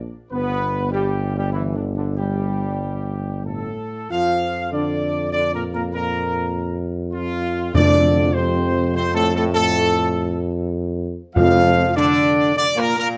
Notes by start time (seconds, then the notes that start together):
Already playing: A#1
0.31 G1 B3 B4
0.92 G3 G4
1.37 G3 G4
1.52 E3 E4
1.75 D3 D4
1.95 D3 D4
2.16 G3 G4
3.45 A2 A3 A4
4.10 F2 F3 F4 F5
4.72 D3 D4 D5
5.32 D3 D4 D5
5.54 A#2 A#3 A#4
5.73 A#2 A#3 A#4
5.92 A#2 A#3 A#4
7.12 F2 F3 F4
7.74 F2 D3 D4 D5
8.34 C3 C4 C5
8.94 C3 C4 C5
9.14 A2 A3 A4
9.34 A2 A3 A4
9.53 A2 A3 A4
11.35 F2 F3 F4 F5
11.95 D3 D4 D5
12.56 D3 D4 D5
12.75 A#2 A#3 A#4
12.98 A#2 A#3 A#4